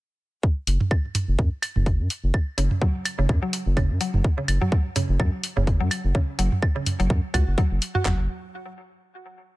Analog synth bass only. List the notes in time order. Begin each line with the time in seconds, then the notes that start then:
0.67 F#1
1.28 F#1
1.39 F#2
1.76 F#1
2.00 F#2
2.24 F#1
2.58 F#1
3.19 F#1
3.29 F#2
3.66 F#1
3.90 F#2
4.14 F#1
4.48 F#1
5.09 F#1
5.20 F#2
5.57 F#1
5.81 F#2
6.04 F#1
6.39 F#1
7.00 F#1
7.10 F#2
7.34 C#2
7.47 F#1
7.71 F#1
8.05 F#1